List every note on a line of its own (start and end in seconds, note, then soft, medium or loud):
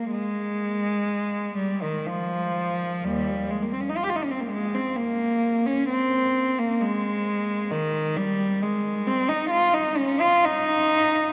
0.00 0.12 A#3 medium
0.11 1.54 G#3 medium
1.57 1.82 G3 medium
1.82 2.06 D#3 medium
2.06 3.06 F3 medium
3.04 3.46 D#2 medium
3.04 3.49 G3 medium
3.50 3.63 G#3 medium
3.62 3.73 A#3 soft
3.73 3.82 C4 medium
3.81 3.89 C#4 soft
3.89 3.96 D#4 soft
3.97 4.03 F4 medium
4.03 4.10 G4 medium
4.09 4.17 F4 medium
4.16 4.24 D#4 medium
4.24 4.32 C#4 medium
4.31 4.41 C4 medium
4.40 4.50 A#3 medium
4.50 4.74 G#3 medium
4.75 4.98 C4 medium
4.97 5.66 A#3 medium
5.66 5.89 C#4 medium
5.89 6.57 C4 medium
6.59 6.81 A#3 medium
6.81 7.71 G#3 medium
7.71 8.17 D#3 medium
8.16 8.62 G3 medium
8.62 9.07 G#3 medium
9.07 9.29 C4 medium
9.29 9.52 D#4 medium
9.51 9.74 F4 medium
9.74 9.98 D#4 medium
9.97 10.22 C#4 medium
10.20 10.45 F4 medium
10.45 11.33 D#4 medium